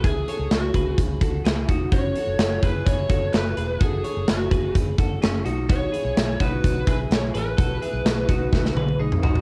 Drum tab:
HH |x-x-x-x-x-x-x-x-|x-x-x-x-x-x-x-x-|x-x-x-x-x-x-x-x-|x-x-x-x-x-x-x-x-|
SD |----o-------o---|----o-------o---|----o-------o---|----o-------o---|
T1 |----------------|----------------|----------------|----------------|
T2 |----------------|----------------|----------------|----------------|
FT |----------------|----------------|----------------|----------------|
BD |o-----o-o-o---o-|o-----o-o-o-----|o-----o-o-o-----|o-----o-o-o-----|

HH |x-x-x-x---------|
SD |----o---oo------|
T1 |----------oo----|
T2 |-------------o--|
FT |--------------oo|
BD |o-----o-o-------|